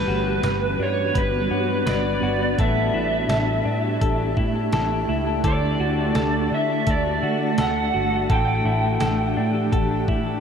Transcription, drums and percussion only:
0.43 snare, closed hi-hat, tambourine
1.15 kick, closed hi-hat
1.87 snare, closed hi-hat, tambourine
2.59 kick, closed hi-hat
3.29 snare, closed hi-hat, tambourine
4.01 kick, closed hi-hat
4.37 kick
4.72 snare, closed hi-hat, tambourine
5.44 kick, closed hi-hat
6.15 snare, closed hi-hat, tambourine
6.87 kick, closed hi-hat
7.58 snare, closed hi-hat, tambourine
8.30 kick, closed hi-hat
9.00 snare, closed hi-hat, tambourine
9.73 kick, closed hi-hat
10.08 kick

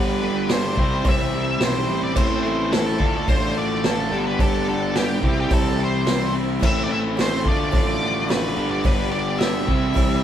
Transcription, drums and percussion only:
0.49 snare, open hi-hat, cowbell
0.77 kick
1.05 kick, open hi-hat, cowbell
1.60 snare, open hi-hat, cowbell
2.16 kick, cowbell, crash
2.73 snare, open hi-hat, cowbell
3.00 kick
3.28 kick, open hi-hat, cowbell
3.84 snare, open hi-hat, cowbell
4.39 kick, open hi-hat, cowbell
4.95 snare, open hi-hat, cowbell
5.23 kick
5.51 kick, open hi-hat, cowbell
6.07 snare, open hi-hat, cowbell
6.62 kick, cowbell, crash
7.17 snare, open hi-hat, cowbell
7.46 kick
7.72 kick, open hi-hat, cowbell
8.29 snare, open hi-hat, cowbell
8.85 kick, open hi-hat, cowbell
9.41 snare, open hi-hat, cowbell
9.68 kick
9.96 kick, open hi-hat, cowbell

